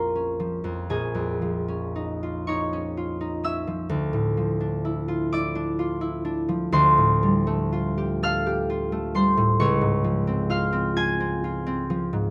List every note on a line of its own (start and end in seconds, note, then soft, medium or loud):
0.00 0.89 A#1 medium
0.00 0.63 F2 soft
0.00 0.38 F3 soft
0.00 0.14 C#4 medium
0.00 2.22 F4 medium
0.00 0.94 A#4 medium
0.00 0.94 C5 medium
0.00 0.94 A#5 medium
0.00 0.93 C6 medium
0.15 1.67 C#4 soft
0.40 1.40 F3 medium
0.64 0.93 F2 medium
0.90 3.94 A#1 medium
0.90 3.95 G#4 medium
0.90 3.94 G#5 medium
1.15 3.94 F2 soft
1.42 3.66 F3 medium
1.68 2.72 C#4 medium
1.96 2.47 D#4 medium
2.23 2.96 F4 medium
2.47 3.19 D#4 medium
2.47 3.94 C#5 medium
2.47 3.93 C#6 medium
2.73 3.42 C#4 medium
2.97 5.07 F4 medium
3.21 3.94 D#4 medium
3.44 3.94 C#4 medium
3.44 6.77 E5 medium
3.44 6.76 E6 loud
3.67 4.36 F3 medium
3.89 6.71 D2 medium
4.13 6.76 A2 medium
4.37 6.47 F3 medium
4.60 5.54 D4 medium
4.85 5.31 E4 medium
5.08 5.78 F4 medium
5.32 6.00 E4 medium
5.32 6.77 D5 medium
5.32 6.77 D6 loud
5.55 6.23 D4 medium
5.79 7.71 F4 medium
6.01 6.76 E4 medium
6.25 6.76 D4 medium
6.49 10.03 F3 medium
6.72 9.63 D2 medium
6.72 9.15 C5 medium
6.72 9.14 C6 loud
6.98 9.36 A2 medium
7.23 9.14 G3 medium
7.47 8.91 A3 medium
7.72 8.68 F4 medium
7.98 8.45 G4 medium
8.23 9.63 A4 medium
8.23 10.50 F5 medium
8.23 10.49 F6 loud
8.46 9.63 G4 medium
8.70 10.49 F4 medium
8.92 9.63 A3 medium
9.15 9.63 G3 medium
9.15 12.30 C5 medium
9.15 12.30 C6 loud
9.37 9.63 A2 medium
9.60 12.30 C#2 medium
9.60 12.30 C#5 medium
9.60 12.30 C#6 loud
9.81 12.12 G#2 medium
10.04 11.89 F3 medium
10.27 10.71 C4 medium
10.50 10.95 F4 medium
10.50 12.30 F5 medium
10.50 12.30 F6 loud
10.72 11.19 C4 medium
10.96 11.43 F4 medium
10.96 12.30 G#5 loud
10.96 12.30 G#6 loud
11.20 11.65 C4 medium
11.44 12.30 F4 medium
11.66 12.30 C4 medium
11.90 12.30 F3 medium
12.13 12.30 G#2 medium